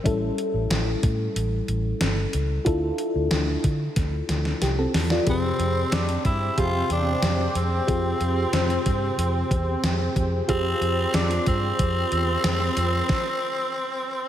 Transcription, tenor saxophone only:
5.30 5.95 C4 medium
5.94 6.25 D4 medium
6.26 6.60 E4 medium
6.59 6.91 F4 loud
6.92 7.52 D4 loud
7.57 10.13 C4 medium
10.50 11.17 C4 loud
11.15 11.47 D4 loud
11.48 14.28 C4 loud

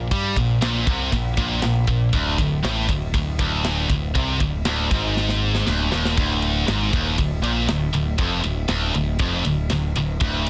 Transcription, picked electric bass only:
0.11 0.35 G2 loud
0.36 0.60 A#1 medium
0.61 0.85 A#1 loud
0.87 1.10 C2 loud
1.12 1.36 A#1 medium
1.38 1.61 A#1 medium
1.62 1.86 A#1 medium
1.87 2.11 A#1 medium
2.13 2.37 D1 medium
2.39 2.62 D1 medium
2.64 2.87 A1 loud
2.88 3.12 D1 medium
3.14 3.37 D1 medium
3.40 3.86 D1 loud
3.90 4.13 D1 medium
4.15 4.39 C2 loud
4.41 4.64 D1 medium
4.66 4.89 D1 loud
4.91 5.62 G#1 loud
5.67 5.90 D1 medium
5.93 6.16 D#1 medium
6.18 6.65 D1 loud
6.68 6.91 G#1 medium
6.93 7.16 D#1 medium
7.18 7.41 D1 medium
7.42 7.66 A#1 medium
7.67 7.91 D1 medium
7.93 8.17 D1 medium
8.19 8.42 F1 loud
8.44 8.68 D1 medium
8.69 8.93 D1 medium
8.93 9.18 D1 medium
9.19 9.43 F1 medium
9.45 9.68 D1 medium
9.71 9.94 D1 medium
9.96 10.19 D1 medium
10.21 10.50 D1 loud

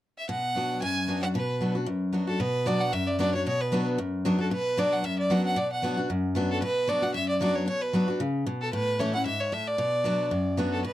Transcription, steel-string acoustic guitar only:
0.29 0.79 B2 medium
0.55 0.80 F#3 medium
0.55 0.81 B3 medium
0.55 0.81 D4 medium
0.55 0.81 F#4 medium
0.82 1.32 F#2 medium
1.08 1.22 F#3 medium
1.08 1.22 B3 medium
1.08 1.22 D4 medium
1.08 1.20 F#4 medium
1.22 1.35 D4 soft
1.22 1.34 F#4 medium
1.35 1.85 B2 medium
1.61 1.75 F#3 medium
1.61 1.75 B3 medium
1.61 1.75 D4 medium
1.61 1.74 F#4 medium
1.75 1.88 D4 soft
1.75 1.87 F#4 medium
1.86 2.37 F#2 medium
2.13 2.27 F#3 medium
2.13 2.27 B3 medium
2.13 2.28 D4 medium
2.13 2.26 F#4 medium
2.27 2.40 D4 soft
2.27 2.39 F#4 medium
2.40 2.90 B2 medium
2.66 2.91 F#3 medium
2.66 2.92 B3 medium
2.66 2.92 D4 medium
2.66 2.93 F#4 loud
2.93 3.43 F#2 medium
3.19 3.33 F#3 medium
3.19 3.33 B3 medium
3.19 3.34 D4 loud
3.19 3.32 F#4 medium
3.34 3.46 D4 soft
3.34 3.45 F#4 medium
3.47 3.97 B2 medium
3.72 3.97 F#3 medium
3.72 3.98 B3 medium
3.72 3.98 D4 medium
3.72 3.98 F#4 loud
3.98 4.49 F#2 medium
4.25 4.39 F#3 medium
4.25 4.39 B3 medium
4.25 4.39 D4 loud
4.25 4.37 F#4 medium
4.38 4.51 D4 soft
4.38 4.50 F#4 medium
4.51 5.02 B2 medium
4.77 5.03 F#3 medium
4.77 5.03 B3 medium
4.77 5.03 D4 loud
4.77 5.04 F#4 loud
5.04 5.54 F#2 loud
5.30 5.55 F#3 medium
5.30 5.56 B3 medium
5.30 5.56 D4 medium
5.30 5.56 F#4 medium
5.56 6.07 B2 medium
5.82 5.96 F#3 medium
5.82 5.97 B3 medium
5.82 5.97 D4 medium
5.82 5.96 F#4 loud
5.97 6.10 D4 medium
5.97 6.09 F#4 medium
6.10 6.60 F#2 medium
6.35 6.61 F#3 medium
6.35 6.61 B3 medium
6.35 6.61 D4 loud
6.35 6.62 F#4 medium
6.62 7.13 B2 medium
6.88 7.02 F#3 medium
6.88 7.02 B3 medium
6.88 7.03 D4 medium
6.88 7.01 F#4 medium
7.02 7.15 D4 soft
7.02 7.14 F#4 medium
7.14 7.65 F#2 medium
7.41 7.66 F#3 medium
7.41 7.67 B3 medium
7.41 7.67 D4 medium
7.41 7.67 F#4 medium
7.68 8.18 B2 medium
7.93 8.07 F#3 medium
7.93 8.08 B3 medium
7.93 8.08 D4 medium
7.93 8.07 F#4 medium
8.08 8.21 D4 medium
8.08 8.20 F#4 medium
8.20 8.45 C#3 medium
8.47 8.72 B2 medium
8.73 9.24 A2 medium
8.99 9.13 E3 medium
8.99 9.14 A3 medium
8.99 9.14 C#4 loud
8.99 9.12 E4 medium
9.14 9.26 C#4 medium
9.14 9.25 E4 medium
9.26 9.51 G#2 medium
9.52 9.77 A2 medium
9.78 10.29 B2 medium
10.04 10.30 F#3 medium
10.04 10.30 B3 medium
10.04 10.31 D4 medium
10.04 10.31 F#4 medium
10.31 10.82 F#2 medium
10.57 10.83 F#3 medium
10.57 10.83 B3 medium
10.57 10.83 D4 medium
10.57 10.84 F#4 medium
10.85 10.93 B2 medium

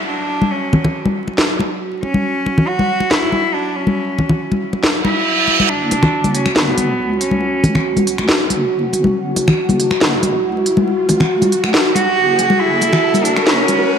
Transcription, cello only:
0.08 0.53 D4 medium
0.52 0.95 C#4 medium
2.03 2.69 C#4 loud
2.68 3.12 F#4 loud
3.11 3.56 E4 loud
3.54 3.77 D4 loud
3.76 4.40 C#4 medium
5.05 5.71 E4 loud
5.70 6.34 D4 loud
6.34 6.55 C#4 medium
6.56 7.17 B3 loud
7.21 8.03 C#4 medium
11.95 12.61 F#4 loud
12.59 13.25 E4 loud
13.24 13.47 D4 loud
13.46 13.99 C#4 loud

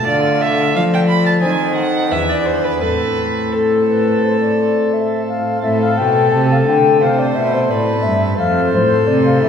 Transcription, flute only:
0.06 0.71 F5 medium
0.74 1.44 D5 medium
0.74 0.79 E5 medium
1.42 2.12 C5 medium
2.11 2.83 B4 medium
2.82 3.22 A4 medium
3.54 3.86 A4 medium
3.89 4.26 B4 medium
4.24 4.41 C5 medium
4.41 4.95 D5 medium
4.93 5.28 E5 medium
5.28 5.62 F5 medium
5.62 5.79 E5 medium
5.81 5.99 F5 medium
5.98 6.34 G5 medium
6.32 6.50 A5 medium
6.52 6.58 F5 medium
6.66 7.01 G5 medium
7.01 7.21 F5 medium
7.19 7.37 D5 medium
7.35 7.55 E5 medium
7.53 7.71 C5 medium
7.70 8.04 D5 medium
8.03 8.38 E5 medium
8.38 8.72 F5 medium
8.73 9.09 C5 medium
9.07 9.25 D5 medium
9.25 9.41 F5 medium
9.42 9.49 E5 medium

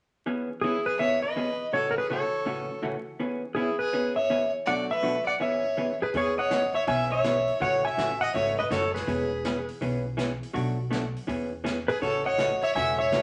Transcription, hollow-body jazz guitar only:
0.26 0.48 E3 soft
0.26 0.48 B3 medium
0.26 0.49 C#4 soft
0.26 0.49 G#4 medium
0.64 0.75 E3 medium
0.64 0.75 B3 medium
0.64 0.75 C#4 medium
0.64 0.75 G#4 medium
0.99 1.21 E3 soft
0.99 1.21 B3 medium
0.99 1.22 C#4 medium
0.99 1.22 G#4 medium
1.36 1.48 E3 medium
1.36 1.48 B3 medium
1.36 1.48 C#4 medium
1.36 1.48 G#4 medium
1.73 1.95 A2 medium
1.73 1.95 C#3 medium
1.73 1.95 E3 medium
1.73 1.95 A3 medium
1.73 1.95 C#4 medium
1.73 1.96 F#4 medium
2.10 2.21 A2 medium
2.10 2.22 C#3 medium
2.10 2.22 E3 medium
2.10 2.22 A3 medium
2.10 2.22 C#4 medium
2.10 2.22 F#4 medium
2.45 2.68 A2 medium
2.45 2.68 C#3 medium
2.45 2.68 E3 medium
2.45 2.69 A3 medium
2.45 2.68 C#4 medium
2.45 2.69 F#4 medium
2.82 2.94 A2 medium
2.82 2.95 C#3 medium
2.82 2.95 E3 medium
2.82 2.95 A3 medium
2.82 2.95 C#4 medium
2.82 2.95 F#4 medium
3.20 3.42 E3 soft
3.20 3.42 B3 medium
3.20 3.42 C#4 medium
3.20 3.42 G#4 medium
3.56 3.68 E3 medium
3.56 3.68 B3 medium
3.56 3.68 C#4 medium
3.56 3.68 G#4 medium
3.93 4.15 E3 medium
3.93 4.16 B3 medium
3.93 4.15 C#4 medium
3.93 4.16 G#4 medium
4.30 4.42 E3 medium
4.30 4.42 B3 medium
4.30 4.42 C#4 medium
4.30 4.42 G#4 medium
4.67 4.89 B2 medium
4.67 4.89 F#3 medium
4.67 4.89 A3 medium
4.67 4.89 D4 medium
4.67 4.90 F#4 medium
5.03 5.15 B2 medium
5.03 5.15 F#3 medium
5.03 5.15 A3 medium
5.03 5.15 D4 medium
5.03 5.15 F#4 medium
5.40 5.62 E3 medium
5.40 5.62 B3 medium
5.40 5.63 C#4 medium
5.40 5.63 G#4 medium
5.77 5.89 E3 medium
5.77 5.89 B3 medium
5.77 5.89 C#4 medium
5.77 5.89 G#4 medium
6.15 6.36 E3 medium
6.15 6.36 B3 medium
6.15 6.36 C#4 medium
6.15 6.37 G#4 medium
6.51 6.62 E3 medium
6.51 6.62 B3 medium
6.51 6.63 C#4 medium
6.51 6.62 G#4 medium
6.87 7.09 E3 medium
6.87 7.10 B3 medium
6.87 7.10 C#4 medium
6.87 7.10 G#4 medium
7.24 7.36 E3 medium
7.24 7.36 B3 medium
7.24 7.36 C#4 medium
7.24 7.36 G#4 medium
7.60 7.83 C#3 medium
7.60 7.83 E3 medium
7.60 7.83 A3 medium
7.60 7.83 C#4 medium
7.60 7.83 F#4 medium
7.98 8.09 C#3 medium
7.98 8.09 E3 medium
7.98 8.09 A3 medium
7.98 8.10 C#4 medium
7.98 8.10 F#4 medium
8.35 8.56 C#3 medium
8.35 8.57 E3 medium
8.35 8.57 A3 medium
8.35 8.57 C#4 medium
8.35 8.57 F#4 medium
8.70 8.82 C#3 medium
8.70 8.82 E3 medium
8.70 8.83 A3 medium
8.70 8.83 C#4 medium
8.70 8.83 F#4 medium
9.07 9.29 E3 medium
9.07 9.29 B3 medium
9.07 9.30 C#4 medium
9.07 9.30 G#4 medium
9.45 9.56 E3 medium
9.45 9.56 B3 medium
9.45 9.56 C#4 medium
9.45 9.57 G#4 medium
9.81 10.03 E3 medium
9.81 10.03 B3 medium
9.81 10.03 C#4 medium
9.81 10.04 G#4 medium
10.17 10.29 E3 medium
10.17 10.29 B3 medium
10.17 10.29 C#4 medium
10.17 10.29 G#4 medium
10.53 10.76 B2 medium
10.53 10.76 F#3 medium
10.53 10.76 A3 medium
10.53 10.77 D4 medium
10.53 10.76 F#4 medium
10.90 11.02 B2 medium
10.90 11.03 F#3 medium
10.90 11.03 A3 medium
10.90 11.03 D4 medium
10.90 11.03 F#4 medium
11.27 11.50 E3 medium
11.27 11.50 B3 medium
11.27 11.50 C#4 medium
11.27 11.50 G#4 medium
11.64 11.76 E3 medium
11.64 11.76 B3 medium
11.64 11.76 C#4 medium
11.64 11.76 G#4 medium
12.02 12.24 C#3 medium
12.02 12.24 E3 medium
12.02 12.24 A3 medium
12.02 12.24 C#4 medium
12.02 12.24 F#4 medium
12.38 12.50 C#3 medium
12.38 12.50 E3 medium
12.38 12.50 A3 medium
12.38 12.50 C#4 medium
12.38 12.50 F#4 medium
12.76 12.98 C#3 medium
12.76 12.98 E3 medium
12.76 12.98 A3 medium
12.76 12.98 C#4 medium
12.76 12.98 F#4 medium
13.12 13.22 C#3 medium
13.12 13.22 E3 medium
13.12 13.22 A3 medium
13.12 13.22 C#4 medium
13.12 13.22 F#4 medium

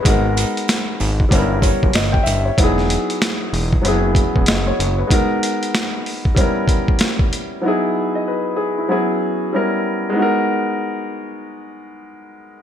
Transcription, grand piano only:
0.00 1.28 G#3 medium
0.00 0.23 B4 medium
0.04 1.28 B3 medium
0.04 1.29 D#4 medium
0.04 1.30 F#4 medium
0.09 1.31 A#4 medium
1.29 2.54 G3 medium
1.29 2.55 B3 medium
1.29 2.56 C#4 medium
1.34 2.56 E4 medium
1.34 2.57 A#4 medium
1.62 1.93 C#5 medium
1.95 2.13 D#5 medium
2.12 2.25 G5 medium
2.23 2.43 E5 medium
2.45 2.75 C#5 medium
2.58 3.80 F#3 medium
2.58 3.82 B3 medium
2.58 3.83 D#4 medium
2.62 3.84 E4 medium
2.62 3.85 G#4 medium
3.81 5.07 F#3 medium
3.81 5.07 B3 medium
3.81 5.08 C#4 medium
3.86 5.09 E4 medium
3.86 5.10 G#4 medium
4.48 4.66 D#5 medium
4.67 4.97 C#5 medium
4.98 5.28 B4 medium
5.07 6.33 G#3 medium
5.07 6.34 B3 medium
5.07 6.34 D#4 medium
5.12 6.35 F#4 medium
5.12 6.36 A#4 medium
6.35 7.60 G3 medium
6.35 7.60 B3 medium
6.35 7.61 C#4 medium
6.39 7.62 E4 medium
6.39 7.63 A#4 medium
7.61 8.86 F#3 medium
7.61 8.87 B3 medium
7.61 7.95 D#4 medium
7.66 7.96 E4 medium
7.66 7.96 G#4 medium
8.15 8.26 D#5 medium
8.28 8.57 B4 medium
8.56 8.75 G#4 medium
8.78 8.89 E4 medium
8.88 9.52 F#3 medium
8.88 9.52 B3 medium
8.88 9.53 C#4 medium
8.88 9.53 E4 medium
8.88 9.54 G#4 medium
9.53 10.16 G3 medium
9.53 10.11 B3 medium
9.53 10.17 C#4 medium
9.53 10.17 E4 medium
9.53 10.17 A#4 medium
10.09 12.62 G#3 medium
10.09 12.62 B3 medium
10.16 12.62 D#4 medium
10.16 12.62 F#4 medium
10.22 12.62 A#4 loud

